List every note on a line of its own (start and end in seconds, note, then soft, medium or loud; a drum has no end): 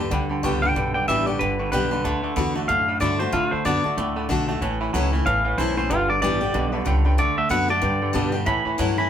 0.00 0.10 E2 loud
0.00 0.12 D4 medium
0.00 0.11 G4 medium
0.11 0.43 D2 loud
0.11 0.28 G2 medium
0.11 0.73 D3 medium
0.11 0.28 D3 loud
0.11 0.22 D5 loud
0.11 0.22 G5 loud
0.11 0.22 B5 loud
0.29 0.42 G2 medium
0.29 0.42 D3 medium
0.29 0.37 D5 medium
0.29 0.37 G5 medium
0.29 0.37 B5 medium
0.43 0.75 C#2 medium
0.43 0.60 G2 medium
0.43 0.61 D3 loud
0.43 0.61 G3 medium
0.43 0.62 B3 medium
0.43 0.62 D4 medium
0.43 0.62 G4 loud
0.43 0.55 D5 loud
0.43 0.55 G5 loud
0.43 0.55 C#6 loud
0.62 0.74 G2 medium
0.62 0.74 D3 medium
0.62 0.76 D4 soft
0.62 0.75 G4 medium
0.62 0.70 D5 medium
0.62 0.93 G5 loud
0.62 0.70 G5 medium
0.62 0.70 B5 medium
0.75 1.07 B1 medium
0.75 0.93 G2 medium
0.75 1.38 G2 medium
0.75 0.93 D3 medium
0.75 0.87 D5 medium
0.75 0.87 G5 medium
0.75 0.87 B5 loud
0.94 1.06 G2 medium
0.94 1.07 D3 medium
0.94 1.02 D5 medium
0.94 1.07 G5 loud
0.94 1.03 G5 medium
0.94 1.03 D6 medium
1.08 1.39 A1 medium
1.08 1.25 G2 medium
1.08 1.25 E3 medium
1.08 1.26 G3 medium
1.08 1.26 B3 medium
1.08 1.27 D4 loud
1.08 1.26 G4 loud
1.08 1.19 D5 medium
1.08 1.26 E5 loud
1.08 1.19 G5 medium
1.08 1.19 D6 medium
1.26 1.38 G2 medium
1.26 1.39 D3 medium
1.26 1.41 D4 medium
1.26 1.40 G4 medium
1.26 1.39 D5 loud
1.26 1.34 D5 medium
1.26 1.35 G5 medium
1.26 1.35 C#6 medium
1.39 1.72 G1 medium
1.39 1.57 G2 medium
1.39 1.57 D3 loud
1.39 2.02 D3 medium
1.39 1.71 B4 loud
1.39 1.51 D5 loud
1.39 1.51 G5 medium
1.39 1.51 B5 loud
1.59 1.71 G2 medium
1.59 1.71 D3 medium
1.59 1.67 D5 medium
1.59 1.67 G5 medium
1.59 1.67 C#6 medium
1.72 2.04 B1 loud
1.72 1.89 G2 medium
1.72 1.89 D3 medium
1.72 1.90 G3 medium
1.72 1.91 B3 medium
1.72 1.91 D4 loud
1.72 1.90 G4 loud
1.72 2.34 B4 loud
1.72 1.83 D5 loud
1.72 1.83 G5 loud
1.72 1.84 B5 loud
1.91 2.03 G2 medium
1.91 2.03 D3 medium
1.91 2.05 D4 soft
1.91 2.04 G4 medium
1.91 1.99 D5 medium
1.91 1.99 G5 medium
1.91 1.99 B5 medium
2.04 2.36 D2 medium
2.04 2.21 D3 medium
2.04 2.35 D3 medium
2.04 2.21 A3 medium
2.04 2.16 D5 medium
2.04 2.16 F#5 medium
2.04 2.16 A5 loud
2.23 2.35 D3 medium
2.23 2.35 A3 medium
2.23 2.31 D5 medium
2.23 2.31 F#5 medium
2.23 2.32 A5 loud
2.36 2.68 E2 loud
2.36 2.54 D3 medium
2.36 2.53 D3 medium
2.36 2.55 A3 medium
2.36 2.54 B3 medium
2.36 2.55 D4 medium
2.36 2.54 F#4 medium
2.36 2.48 D5 medium
2.36 2.48 F#5 medium
2.36 2.48 A5 loud
2.55 2.67 D3 medium
2.55 2.67 A3 medium
2.55 2.69 D4 medium
2.55 2.68 F#4 medium
2.55 2.64 D5 medium
2.55 2.64 F#5 medium
2.55 2.64 A5 medium
2.68 3.00 F#2 loud
2.68 3.30 A2 medium
2.68 2.86 D3 medium
2.68 2.86 A3 loud
2.68 2.80 D5 medium
2.68 3.00 F5 loud
2.68 2.80 F#5 medium
2.68 2.80 A5 loud
2.88 3.00 D3 medium
2.88 3.00 A3 medium
2.88 2.96 D5 medium
2.88 2.96 F#5 medium
2.88 2.96 B5 medium
3.00 3.32 G2 loud
3.00 3.19 D3 medium
3.00 3.18 D3 medium
3.00 3.19 A3 medium
3.00 3.18 A3 medium
3.00 3.19 D4 loud
3.00 3.19 F#4 medium
3.00 3.19 D5 loud
3.00 3.12 D5 loud
3.00 3.12 F#5 medium
3.00 3.12 B5 loud
3.19 3.32 D3 medium
3.19 3.32 A3 medium
3.19 3.34 D4 medium
3.19 3.33 F#4 medium
3.19 3.32 C5 loud
3.19 3.28 D5 medium
3.19 3.28 F#5 medium
3.19 3.28 A5 medium
3.33 3.51 A2 medium
3.33 3.64 D3 medium
3.33 3.50 D3 medium
3.33 3.50 A3 medium
3.33 3.51 F4 loud
3.33 3.45 D5 medium
3.33 3.45 F#5 medium
3.33 3.45 B5 loud
3.51 3.64 D3 medium
3.51 3.64 A3 medium
3.51 3.64 C5 medium
3.51 3.60 D5 medium
3.51 3.60 F#5 medium
3.51 3.60 B5 medium
3.51 muted upright bass stroke soft
3.65 3.83 F#2 loud
3.65 3.83 D3 medium
3.65 3.82 D3 medium
3.65 3.84 A3 medium
3.65 3.83 B3 loud
3.65 3.84 D4 loud
3.65 3.83 F#4 loud
3.65 4.28 D5 loud
3.65 3.77 D5 medium
3.65 3.77 F#5 medium
3.65 3.77 A5 medium
3.84 3.96 D3 medium
3.84 3.96 A3 medium
3.84 3.98 D4 soft
3.84 3.97 F#4 medium
3.84 3.92 D5 medium
3.84 3.92 F#5 medium
3.84 3.92 A5 medium
3.84 muted upright bass stroke soft
3.97 4.29 D2 medium
3.97 4.59 A2 medium
3.97 4.14 D3 medium
3.97 4.15 A3 loud
3.97 4.09 D5 medium
3.97 4.09 F#5 medium
3.97 4.09 B5 loud
4.16 4.28 D3 medium
4.16 4.28 A3 medium
4.16 4.24 D5 medium
4.16 4.24 F#5 medium
4.16 4.24 B5 loud
4.29 4.61 B1 loud
4.29 4.47 D3 medium
4.29 4.46 D3 medium
4.29 4.48 A3 medium
4.29 4.47 A3 medium
4.29 4.48 D4 loud
4.29 4.48 F#4 loud
4.29 4.41 D5 loud
4.29 4.41 F#5 loud
4.29 4.41 A5 loud
4.48 4.60 D3 medium
4.48 4.60 A3 medium
4.48 4.62 D4 soft
4.48 4.61 F#4 medium
4.48 4.56 D5 medium
4.48 4.56 F#5 medium
4.48 4.56 A5 loud
4.61 4.93 A1 medium
4.61 4.79 A2 medium
4.61 5.23 A2 medium
4.61 4.79 E3 medium
4.61 4.73 C#5 loud
4.61 4.73 E5 loud
4.61 4.73 A5 loud
4.80 4.92 A2 medium
4.80 4.92 E3 medium
4.80 4.88 C#5 medium
4.80 4.89 E5 medium
4.80 4.89 B5 loud
4.93 5.25 C#2 loud
4.93 5.10 A2 medium
4.93 5.12 E3 medium
4.93 5.11 F#3 loud
4.93 5.12 A3 loud
4.93 5.13 C#4 loud
4.93 5.12 E4 loud
4.93 5.05 C#5 medium
4.93 5.05 E5 medium
4.93 5.05 F#5 medium
5.12 5.24 A2 medium
5.12 5.25 E3 medium
5.12 5.26 C#4 soft
5.12 5.25 E4 medium
5.12 5.20 C#5 medium
5.12 5.21 E5 medium
5.12 5.21 B5 medium
5.25 5.57 A1 loud
5.25 5.88 E2 medium
5.25 5.43 A2 medium
5.25 5.43 E3 medium
5.25 5.37 C#5 loud
5.25 5.37 E5 medium
5.25 5.57 F5 loud
5.25 5.37 A5 loud
5.44 5.57 A2 medium
5.44 5.57 E3 medium
5.44 5.53 C#5 medium
5.44 5.53 E5 medium
5.44 5.53 F#5 medium
5.57 5.89 B1 loud
5.57 5.75 A2 medium
5.57 5.76 E3 medium
5.57 5.75 E3 medium
5.57 5.77 A3 medium
5.57 5.77 C#4 loud
5.57 5.76 E4 loud
5.57 5.76 C5 loud
5.57 5.69 C#5 loud
5.57 5.69 E5 medium
5.57 5.69 A5 loud
5.76 5.89 A2 medium
5.76 5.89 E3 medium
5.76 5.91 C#4 medium
5.76 5.90 E4 medium
5.76 5.90 C5 medium
5.76 5.85 C#5 medium
5.76 5.85 E5 medium
5.76 5.85 F#5 medium
5.89 6.21 G1 medium
5.89 6.07 G2 medium
5.89 6.52 G2 medium
5.89 6.07 D3 medium
5.89 6.08 F4 loud
5.89 6.01 B4 medium
5.89 6.01 D5 medium
5.89 6.02 G5 loud
6.09 6.21 G2 medium
6.09 6.21 D3 medium
6.09 6.17 B4 medium
6.09 6.17 D5 medium
6.09 6.21 D5 loud
6.09 6.17 F#5 medium
6.22 6.54 A1 medium
6.22 6.39 G2 medium
6.22 6.39 E3 loud
6.22 6.40 G3 medium
6.22 6.41 B3 medium
6.22 6.41 D4 loud
6.22 6.39 G4 loud
6.22 6.33 B4 medium
6.22 6.33 D5 medium
6.22 6.84 D5 loud
6.22 6.33 E5 medium
6.40 6.53 G2 medium
6.40 6.53 D3 medium
6.40 6.55 D4 medium
6.40 6.54 G4 medium
6.40 6.48 B4 medium
6.40 6.49 D5 medium
6.40 6.49 G5 medium
6.53 6.86 B1 loud
6.53 6.71 G2 medium
6.53 6.85 B2 medium
6.53 6.72 D3 loud
6.53 6.65 B4 medium
6.53 6.65 D5 medium
6.53 6.66 G5 loud
6.72 6.85 G2 medium
6.72 6.85 D3 medium
6.72 6.81 B4 loud
6.72 6.81 D5 medium
6.72 6.81 E5 loud
6.85 7.18 C#2 loud
6.85 7.03 G2 medium
6.85 7.17 C#3 medium
6.85 7.04 D3 medium
6.85 6.97 B4 loud
6.85 6.97 D5 loud
6.85 6.97 G5 loud
7.04 7.17 G2 medium
7.04 7.17 D3 medium
7.04 7.13 B4 medium
7.04 7.13 D5 medium
7.04 7.13 G5 loud
7.17 7.50 D2 loud
7.17 7.48 D3 medium
7.17 7.35 D3 medium
7.17 7.36 A3 medium
7.17 7.29 A4 loud
7.17 7.30 D5 medium
7.17 7.37 D5 loud
7.17 7.30 F#5 loud
7.37 7.49 D3 medium
7.37 7.50 A3 medium
7.37 7.45 A4 medium
7.37 7.45 D5 medium
7.37 7.50 E5 loud
7.37 7.45 F#5 medium
7.49 7.82 F#2 loud
7.49 7.68 D3 medium
7.49 7.67 D3 medium
7.49 7.69 A3 loud
7.49 7.68 B3 loud
7.49 7.69 D4 loud
7.49 7.67 F#4 loud
7.49 7.62 A4 medium
7.49 7.62 D5 medium
7.49 7.62 E5 medium
7.49 7.69 F#5 loud
7.68 7.82 D3 medium
7.68 7.82 A3 medium
7.68 7.83 D4 soft
7.68 7.82 F#4 medium
7.68 7.77 A4 medium
7.68 7.77 D5 medium
7.68 8.32 D5 loud
7.68 7.77 F#5 medium
7.82 8.44 G2 loud
7.82 8.14 G2 loud
7.82 8.00 G2 medium
7.82 8.00 D3 loud
7.82 7.94 B4 loud
7.82 7.94 D5 loud
7.82 7.94 G5 loud
8.01 8.14 G2 medium
8.01 8.14 D3 medium
8.01 8.09 B4 medium
8.01 8.09 D5 medium
8.01 8.10 G5 medium
8.13 8.32 G2 medium
8.13 8.46 B2 loud
8.13 8.32 D3 loud
8.13 8.32 G3 loud
8.13 8.32 B3 medium
8.13 8.33 D4 medium
8.13 8.31 G4 medium
8.13 8.26 B4 loud
8.13 8.26 D5 loud
8.13 8.26 A5 loud
8.32 8.46 G2 medium
8.32 8.46 D3 medium
8.32 8.47 D4 soft
8.32 8.46 G4 medium
8.32 8.42 B4 medium
8.32 8.42 D5 medium
8.32 8.42 G5 loud
8.46 8.64 A2 medium
8.46 9.08 A2 medium
8.46 8.65 A2 loud
8.46 8.64 E3 medium
8.46 8.58 C#5 loud
8.46 8.58 E5 medium
8.46 8.58 A5 loud
8.46 8.96 B5 loud
8.65 8.77 A2 medium
8.65 8.78 E3 medium
8.65 8.73 C#5 medium
8.65 8.74 E5 medium
8.65 8.74 B5 medium
8.65 muted upright bass stroke soft
8.78 9.10 G2 medium
8.78 8.96 A2 medium
8.78 8.97 E3 medium
8.78 8.96 F#3 loud
8.78 8.97 A3 loud
8.78 8.97 C#4 loud
8.78 8.96 E4 loud
8.78 8.90 C#5 medium
8.78 8.90 E5 medium
8.78 8.90 A5 medium
8.97 9.10 A2 medium
8.97 9.10 E3 medium
8.97 9.10 C#4 medium
8.97 9.10 E4 medium
8.97 9.06 C#5 medium
8.97 9.06 E5 medium
8.97 9.06 A5 medium
8.97 9.10 B5 loud